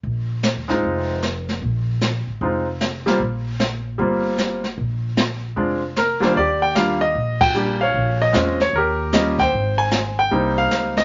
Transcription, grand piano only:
0.68 1.19 G#3 medium
0.68 1.19 C4 soft
0.68 1.20 D#4 medium
0.68 1.20 F4 medium
2.41 2.64 G#3 soft
2.41 2.65 C4 soft
2.41 2.65 D#4 soft
2.41 2.66 F4 soft
3.06 3.19 G3 medium
3.06 3.19 A#3 medium
3.06 3.19 C4 medium
3.06 3.20 F4 medium
3.98 4.59 G3 soft
3.98 4.59 A#3 soft
3.98 4.60 C4 soft
3.98 4.60 F4 medium
5.56 5.80 G#3 soft
5.56 5.80 C4 soft
5.56 5.81 D4 soft
5.56 5.81 F4 soft
5.98 6.24 A#4 medium
6.20 6.34 D#2 medium
6.20 6.34 G3 medium
6.20 6.34 A#3 medium
6.20 6.35 D4 medium
6.20 6.35 F4 medium
6.20 6.32 C5 medium
6.34 6.37 C5 medium
6.34 6.63 D5 medium
6.39 7.13 G4 medium
6.62 6.75 G5 medium
6.75 6.99 G3 soft
6.75 6.99 A#3 soft
6.75 6.99 D4 soft
6.75 7.00 F4 medium
6.75 7.02 F5 medium
7.01 7.42 D#5 medium
7.41 7.78 G5 loud
7.55 7.78 G3 soft
7.55 7.78 A#3 soft
7.55 7.79 D4 soft
7.55 7.79 G4 soft
7.81 8.57 C#5 medium
7.81 8.18 F5 medium
8.22 8.62 D#5 medium
8.32 8.56 G#3 medium
8.32 8.57 C4 medium
8.32 8.57 C#4 soft
8.32 8.57 F4 medium
8.61 8.75 C#5 medium
8.76 9.50 G4 medium
8.76 9.15 A#4 medium
9.13 9.36 G3 medium
9.13 9.36 A#3 soft
9.13 9.37 C#4 soft
9.13 9.37 F4 medium
9.13 9.40 D#5 medium
9.40 10.15 C5 medium
9.40 9.76 G5 loud
9.78 10.15 G#5 medium
10.19 10.55 G5 medium
10.31 10.91 G3 medium
10.31 10.92 A#3 soft
10.31 10.92 C4 soft
10.31 10.92 D#4 medium
10.58 10.98 F5 medium
10.98 11.03 D#5 medium

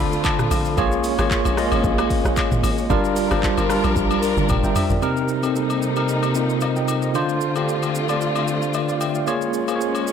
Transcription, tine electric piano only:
0.00 0.80 D3 loud
0.00 0.80 D4 loud
0.00 0.78 F4 loud
0.00 0.79 A4 loud
0.00 0.79 C5 loud
0.00 0.23 B5 medium
0.25 0.49 A5 medium
0.51 0.76 F5 medium
0.77 1.10 A#3 loud
0.77 1.10 F4 loud
0.77 1.10 G#4 loud
0.77 1.10 C#5 loud
1.18 1.50 A#3 medium
1.18 1.50 F4 medium
1.18 1.50 G#4 medium
1.18 1.51 C#5 medium
1.57 2.43 A#3 loud
1.57 2.43 F4 medium
1.57 2.43 G#4 medium
1.57 2.43 D#5 loud
2.90 3.22 G3 loud
2.90 3.22 D4 loud
2.90 3.23 F4 loud
2.90 3.23 A#4 loud
3.31 3.62 G3 medium
3.31 3.63 D4 medium
3.31 3.63 F4 medium
3.31 3.63 C5 loud
3.69 4.55 G3 medium
3.69 4.55 D4 medium
3.69 4.55 F4 medium
3.69 4.50 A#4 loud
4.50 4.63 G5 medium
4.50 4.63 A#5 medium
4.64 4.75 E5 medium
4.64 4.75 G5 medium
4.76 4.90 C5 medium
4.76 4.90 E5 medium
4.91 5.02 A#4 medium
4.91 5.16 D5 medium
5.02 5.34 C3 loud
5.02 5.35 C4 loud
5.02 5.35 D#4 loud
5.02 5.35 A#4 loud
5.43 5.85 C3 medium
5.43 5.85 C4 medium
5.43 5.85 D#4 medium
5.43 5.85 A4 medium
5.96 6.28 C3 medium
5.96 6.28 C4 medium
5.96 6.28 D#4 medium
5.96 6.28 A#4 medium
6.35 7.00 C3 medium
6.35 7.00 C4 medium
6.35 7.00 D#4 medium
6.35 7.00 F4 medium
6.62 6.76 C5 medium
6.62 6.75 D#5 medium
6.76 7.02 D#5 medium
6.76 7.02 G5 medium
7.03 7.14 C5 medium
7.03 7.28 D#5 medium
7.14 7.47 D3 loud
7.14 7.47 D4 loud
7.14 7.47 F4 loud
7.14 7.48 C5 loud
7.56 7.97 D3 medium
7.56 7.97 D4 medium
7.56 7.98 F4 medium
7.56 7.98 G4 medium
8.09 8.40 D3 medium
8.09 8.40 D4 medium
8.09 8.41 F4 medium
8.09 8.41 D5 medium
8.74 8.88 B4 medium
8.74 8.88 D5 medium
8.89 9.00 D5 medium
8.89 9.00 F5 medium
9.00 9.15 E5 medium
9.00 9.14 G5 medium
9.16 9.41 D5 medium
9.16 9.41 F5 medium
9.27 9.59 A#3 loud
9.27 9.60 F4 loud
9.27 9.60 G#4 loud
9.27 9.60 C#5 loud
9.68 10.10 A#3 medium
9.68 10.10 F4 medium
9.68 10.10 G#4 medium
9.68 9.74 C5 medium
9.76 10.12 C#5 medium

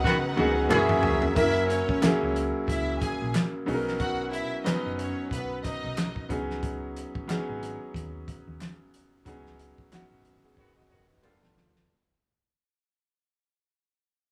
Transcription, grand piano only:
0.00 0.36 F#3 medium
0.00 0.37 B3 medium
0.00 0.37 C#4 medium
0.00 0.38 D#4 medium
0.00 0.39 G#4 loud
0.36 0.68 F#3 medium
0.36 0.70 B3 medium
0.36 0.69 C#4 medium
0.36 0.71 D#4 medium
0.36 0.71 G#4 loud
0.69 1.25 F#3 loud
0.69 1.25 A#3 medium
0.69 1.25 C#4 medium
0.69 1.26 E4 medium
0.69 1.26 G#4 loud
1.35 1.86 F#3 medium
1.35 1.87 A#3 medium
1.35 1.87 C#4 medium
1.35 1.87 E4 medium
1.35 1.88 A#4 medium
2.02 2.99 F#3 medium
2.02 2.99 A#3 medium
2.02 2.99 C#4 medium
2.02 3.00 E4 medium
2.02 3.00 G#4 medium
3.66 4.47 F#3 medium
3.66 4.48 B3 medium
3.66 4.48 C#4 medium
3.66 4.48 D#4 medium
3.66 3.75 G#4 medium
3.74 4.52 A#4 medium
4.64 5.62 F#3 medium
4.64 5.62 B3 medium
4.64 5.62 C#4 medium
4.64 5.63 D#4 medium
4.64 5.63 B4 medium
6.29 7.10 F#3 medium
6.29 7.11 B3 medium
6.29 7.11 C#4 medium
6.29 7.11 D#4 medium
6.29 7.12 G#4 medium
7.27 8.25 F#3 medium
7.27 8.25 B3 medium
7.27 8.26 C#4 medium
7.27 8.26 D#4 medium
7.27 8.26 G#4 medium
9.25 9.76 F#3 medium
9.25 9.77 B3 medium
9.25 9.77 C#4 medium
9.25 9.77 D#4 medium
9.25 9.78 G#4 medium
9.92 10.89 F#3 medium
9.92 10.25 B3 medium
9.92 10.25 C#4 medium
9.92 10.25 D#4 medium
9.92 10.26 F#4 medium
10.44 10.57 B3 medium
10.44 10.57 G#4 medium
10.58 10.76 C#5 medium
10.76 10.90 F#4 medium
10.76 10.88 D#5 medium
10.90 11.08 C#5 medium
10.90 11.21 D#5 medium
11.10 11.41 D#4 medium
11.10 11.41 B4 medium
11.22 11.78 G3 medium
11.22 11.31 A#3 medium
11.22 11.78 D4 medium
11.22 11.79 F4 medium
11.22 11.79 A4 medium
11.22 11.41 G5 medium
11.29 11.81 B3 medium
11.42 11.86 A5 medium

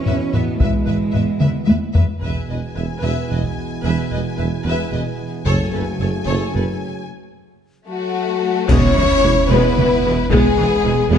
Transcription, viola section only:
0.07 0.15 B4 soft
0.34 0.42 B4 soft
0.62 0.70 B4 soft
0.86 0.94 B4 soft
1.13 1.21 B4 soft
1.41 1.49 B4 soft
1.68 1.76 B4 soft
1.94 2.02 B4 soft
2.22 2.47 B4 soft
2.50 2.58 B4 soft
2.75 2.83 B4 soft
3.01 3.27 B4 soft
3.30 3.38 B4 soft
3.83 4.09 B4 soft
4.11 4.19 B4 soft
4.37 4.45 B4 soft
4.64 4.90 B4 soft
4.92 5.00 B4 soft
5.47 5.71 A4 medium
5.73 5.81 A4 soft
6.01 6.09 A4 soft
6.27 6.52 A4 soft
6.54 6.62 A4 soft
8.69 8.95 G#3 medium
8.69 8.95 B3 medium
8.96 9.05 E3 medium
9.23 9.31 E3 medium
9.23 9.31 G#3 medium
9.51 9.76 G#3 medium
9.51 9.76 B3 medium
9.78 9.87 E3 medium
10.05 10.13 E3 medium
10.05 10.13 G#3 medium
10.31 10.56 G#3 medium
10.31 10.56 B3 medium
10.57 10.66 E3 medium
10.84 10.92 E3 medium
10.84 10.92 G#3 medium
11.11 11.18 G#3 medium
11.11 11.18 B3 medium

